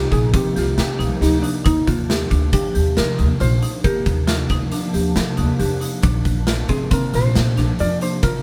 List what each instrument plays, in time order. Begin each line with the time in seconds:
Already playing: analog synth pad C3 F3 A#3 D#4, hollow-body jazz guitar G4
0.11 upright bass A#1, marimba D#4, hollow-body jazz guitar G#4, kick, closed hi-hat
0.21 analog synth pad C3 F3 A#3 D#4
0.34 marimba C4, hollow-body jazz guitar G4, kick, closed hi-hat
0.56 upright bass C2, hollow-body jazz guitar F4, marimba G4, snare, closed hi-hat
0.66 analog synth pad C3 F3 A#3 D#4
0.77 upright bass C3, hollow-body jazz guitar G4, snare, closed hi-hat
0.99 upright bass C2, marimba D#4, closed hi-hat
1.21 upright bass D2, hollow-body jazz guitar D#4, marimba G4, snare, closed hi-hat
1.42 hollow-body jazz guitar D4, marimba D#4, closed hi-hat
1.64 upright bass D#2, marimba D#4, hollow-body jazz guitar D#4, kick, closed hi-hat
1.77 analog synth pad C3 F3 A#3 D4
1.87 upright bass D#2, hollow-body jazz guitar F4, kick, closed hi-hat
2.09 analog synth pad C3 F3 A#3 C4, marimba G4, snare, closed hi-hat
2.30 upright bass D2, analog synth pad C3 F3 A#3 D4, marimba D4, kick, closed hi-hat
2.53 marimba D4, hollow-body jazz guitar G4, kick, closed hi-hat
2.75 upright bass D#2, marimba G4, closed hi-hat
2.96 analog synth pad C3 F3 A#3 F4, upright bass D#3, hollow-body jazz guitar A#4, snare, closed hi-hat
3.18 upright bass D#2, analog synth pad C3 F3 A#3 D4, marimba D#4, closed hi-hat
3.40 upright bass A#1, marimba F4, hollow-body jazz guitar C5, closed hi-hat
3.62 analog synth pad C3 F3 A#3 D4, marimba D#4, closed hi-hat
3.84 marimba G4, hollow-body jazz guitar A#4, kick, closed hi-hat
4.06 upright bass D#2, kick, closed hi-hat
4.27 analog synth pad C3 F3 A#3 D4, marimba F4, snare, closed hi-hat
4.49 upright bass D2, marimba D#4, kick, closed hi-hat
4.60 analog synth pad C3 F3 A#3 D4
4.72 marimba D4, closed hi-hat
4.93 upright bass D#2, marimba G4, closed hi-hat
5.04 analog synth pad C3 F3 A#3 D4
5.16 upright bass D#3, snare, closed hi-hat
5.37 upright bass D#2, marimba D#4, closed hi-hat
5.59 upright bass F2, marimba G4, closed hi-hat
5.81 marimba D#4, closed hi-hat
6.03 upright bass A#1, marimba D4, kick, closed hi-hat
6.14 analog synth pad C3 F3 A#3 D4
6.25 upright bass A#1, kick, closed hi-hat
6.47 analog synth pad C3 F3 A#3 C4, marimba F4, snare, closed hi-hat
6.69 upright bass G1, analog synth pad C3 F3 A#3 D4, marimba C4, hollow-body jazz guitar G#4, kick, closed hi-hat
6.91 marimba C4, hollow-body jazz guitar A#4, kick, closed hi-hat
7.14 upright bass A#1, marimba F4, hollow-body jazz guitar C5, snare, closed hi-hat
7.35 upright bass A#2, analog synth pad C3 F3 A#3 D4, snare, closed hi-hat
7.57 upright bass A#1, analog synth pad C3 F3 A#3 D4, marimba D4, snare, closed hi-hat
7.79 upright bass F2, marimba F4, hollow-body jazz guitar D5, closed hi-hat
8.01 analog synth pad C3 F3 A#3 D4, marimba D4, hollow-body jazz guitar C5, closed hi-hat
8.23 marimba F4, hollow-body jazz guitar A#4, kick, closed hi-hat